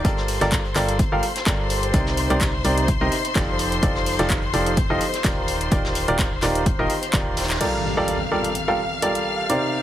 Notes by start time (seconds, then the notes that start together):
0.05 G1 G3 F4 G4 A4 A#4 C5 D5 C6, kick, closed hi-hat
0.17 snare
0.28 open hi-hat
0.41 G1 G3 F4 G4 A4 A#4 D5, snare, closed hi-hat
0.51 kick, snare, clap, closed hi-hat
0.65 closed hi-hat
0.76 G1 G3 F4 G4 A4 A#4 D5, clap, closed hi-hat, open hi-hat
0.89 closed hi-hat
0.99 kick, closed hi-hat
1.12 G1 G3 F4 G4 A4 A#4 F5
1.23 closed hi-hat, open hi-hat
1.36 snare, closed hi-hat
1.46 G1 G3 F4 G4 A4 A#4 D5, kick, snare, clap, closed hi-hat
1.70 closed hi-hat, open hi-hat
1.83 closed hi-hat
1.94 C2 C3 D#4 G4 A#4 C5 D5, kick, closed hi-hat
2.06 snare
2.17 closed hi-hat, open hi-hat
2.30 C2 C3 D#4 G4 A#4 C5 D5, closed hi-hat
2.41 kick, snare, clap, closed hi-hat
2.64 C2 C3 D#4 G4 A#4 C5 D5, closed hi-hat, open hi-hat
2.78 closed hi-hat
2.88 kick, closed hi-hat
3.01 C2 C3 D#4 G4 A#4 C5 D#5
3.12 closed hi-hat, open hi-hat
3.25 closed hi-hat
3.35 F1 F3 D#4 F4 G4 A4 D5, kick, snare, clap, closed hi-hat
3.59 closed hi-hat, open hi-hat
3.72 closed hi-hat
3.83 F1 F3 D#4 F4 G4 A4 D5, kick, closed hi-hat
3.95 snare
4.06 open hi-hat
4.19 F1 F3 D#4 F4 G4 A4 D5, snare, closed hi-hat
4.29 kick, snare, clap, closed hi-hat
4.42 closed hi-hat
4.54 F1 F3 D#4 F4 G4 A4 D5, closed hi-hat, open hi-hat
4.66 closed hi-hat
4.77 kick, closed hi-hat
4.90 F1 F3 D#4 F4 G4 A4 D#5
5.01 closed hi-hat, open hi-hat
5.14 snare, closed hi-hat
5.24 D#1 D#3 D#4 F4 G4 A#4 D5, kick, snare, clap, closed hi-hat
5.48 closed hi-hat, open hi-hat
5.61 closed hi-hat
5.71 D#1 D#3 D#4 F4 G4 A#4 D5, kick, closed hi-hat
5.85 snare
5.95 closed hi-hat, open hi-hat
6.08 D#1 D#3 D#4 F4 G4 A#4 D5, closed hi-hat
6.19 kick, snare, clap, closed hi-hat
6.42 D#1 D#3 D#4 F4 G4 A#4 D5, snare, clap, closed hi-hat, open hi-hat
6.55 closed hi-hat
6.66 kick, closed hi-hat
6.79 D#1 D#3 D#4 F4 G4 A#4 D#5
6.90 open hi-hat
7.03 closed hi-hat
7.13 D#1 D#3 D#4 F4 G4 A#4 D5, kick, snare, clap, closed hi-hat
7.37 snare, closed hi-hat, open hi-hat
7.43 snare, closed hi-hat
7.50 snare, clap, closed hi-hat
7.55 snare, closed hi-hat
7.61 G3 F4 G4 A4 A#4 D5 F5 F6, closed hi-hat, crash, impact
7.97 G3 F4 G4 A4 A#4 D5
8.08 closed hi-hat
8.31 G3 F4 G4 A4 A#4 D5
8.44 closed hi-hat
8.55 closed hi-hat
8.68 G3 F4 G4 A4 A#4 F5
9.02 G3 F4 G4 A4 A#4 D5, closed hi-hat
9.15 closed hi-hat
9.50 C3 D#4 G4 A#4 C5 D5, closed hi-hat